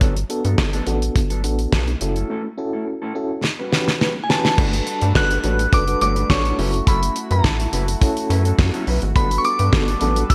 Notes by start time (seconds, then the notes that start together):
Already playing: A4 C#5
0.01 G1 F#3 B3 D4 A4, kick, closed hi-hat
0.16 muted clean electric guitar stroke, closed hi-hat
0.29 B3 D4 F#4 A4, muted clean electric guitar stroke, closed hi-hat
0.44 G2 F#3 B3 D4 A4, closed hi-hat
0.58 G1, kick, snare
0.73 F#3 B3 D4 A4, closed hi-hat
0.86 A1 B3 D4 F#4 A4, muted clean electric guitar stroke, closed hi-hat
1.02 muted clean electric guitar stroke, closed hi-hat
1.15 G1, muted clean electric guitar stroke, kick, closed hi-hat
1.30 F#3 B3 D4 A4, closed hi-hat
1.44 A1 B3 D4 F#4 A4, muted clean electric guitar stroke, closed hi-hat
1.59 muted clean electric guitar stroke, closed hi-hat
1.72 B1 F#3 B3 D4 A4, kick, snare
1.87 muted clean electric guitar stroke, closed hi-hat
2.01 F#1 C#4 E4 F#4 A4, muted clean electric guitar stroke, closed hi-hat
2.16 A3 C#4 E4 A4, closed hi-hat
2.29 A3 C#4 E4 A4
2.45 muted clean electric guitar stroke
2.58 C#4 E4 F#4 A4, muted clean electric guitar stroke
2.73 A3 C#4 E4 A4
2.87 muted clean electric guitar stroke
3.02 A3 C#4 E4 A4
3.15 C#4 E4 F#4 A4, muted clean electric guitar stroke
3.30 muted clean electric guitar stroke
3.44 muted clean electric guitar stroke, snare
3.59 G3 C#4 F#4 B4
3.72 E3 C#4 F#4 G4 B4, muted clean electric guitar stroke, snare
3.88 snare
4.00 G3 C#4 F#4 B4, snare
4.16 muted clean electric guitar stroke
4.24 G#5
4.29 E3 C#4 F#4 G4 B4 A5, muted clean electric guitar stroke, snare
4.44 G3 C#4 F#4 B4, snare
4.58 G1 G3 A3 D4 F#4 A4 B4, kick, crash
4.73 muted clean electric guitar stroke, closed hi-hat
4.86 muted clean electric guitar stroke, closed hi-hat
5.01 G2 A3 D4 F#4 C#5, closed hi-hat
5.15 G1 D4 F#4 A4 B4 F#6, muted clean electric guitar stroke, kick, snare
5.30 muted clean electric guitar stroke, closed hi-hat
5.44 A1 A3 D4 F#4 A4 B4 C#5, closed hi-hat
5.59 muted clean electric guitar stroke, closed hi-hat
5.72 F#1 D4 F#4 A4 B4 D6, kick, closed hi-hat
5.87 D4 F#4 A4 B4, muted clean electric guitar stroke, closed hi-hat
6.01 G1 A3 D4 F#4 C#5 D6, closed hi-hat
6.16 A3 D4 F#4 B4, closed hi-hat
6.29 A1 D4 F#4 A4 C#5 C#6, kick, snare
6.45 muted clean electric guitar stroke, closed hi-hat
6.58 F#1 F#3 A3 C#4 E4 F#4 A4 B4, open hi-hat
6.73 muted clean electric guitar stroke, closed hi-hat
6.87 F#1 F#3 C#4 E4 A4 B5, kick, closed hi-hat
7.02 muted clean electric guitar stroke, closed hi-hat
7.16 muted clean electric guitar stroke, closed hi-hat
7.31 F#2 F#3 C#4 E4 B4 A5, closed hi-hat
7.44 A1, kick, snare
7.59 muted clean electric guitar stroke, closed hi-hat
7.73 F#1 F#3 C#4 E4 B4, closed hi-hat
7.88 muted clean electric guitar stroke, closed hi-hat
8.01 C#4 E4 F#4 A4, muted clean electric guitar stroke, kick, closed hi-hat
8.16 muted clean electric guitar stroke, closed hi-hat
8.30 F#2 F#3 C#4 E4 B4, closed hi-hat
8.45 F#3 C#4 E4 A4, closed hi-hat
8.59 F#2, kick, snare
8.73 F#3 C#4 E4 A4, closed hi-hat
8.87 B1 F#3 C#4 E4 B4, open hi-hat
9.02 G#1, muted clean electric guitar stroke, closed hi-hat
9.15 G1 F#3 G3 B3 D4 F#4 A4 B4 B5, kick, closed hi-hat
9.30 muted clean electric guitar stroke, closed hi-hat
9.38 C#6
9.44 D6, muted clean electric guitar stroke, closed hi-hat
9.59 G2 F#3 B3 D4 B4, closed hi-hat
9.72 G1 B3 D4 F#4 A4, kick, snare
9.88 muted clean electric guitar stroke, closed hi-hat
10.01 A1 F#3 B3 D4 F#4 A4 B4, closed hi-hat
10.16 muted clean electric guitar stroke, closed hi-hat
10.29 F#1 B3 D4 F#4 B4 E6, muted clean electric guitar stroke, kick, closed hi-hat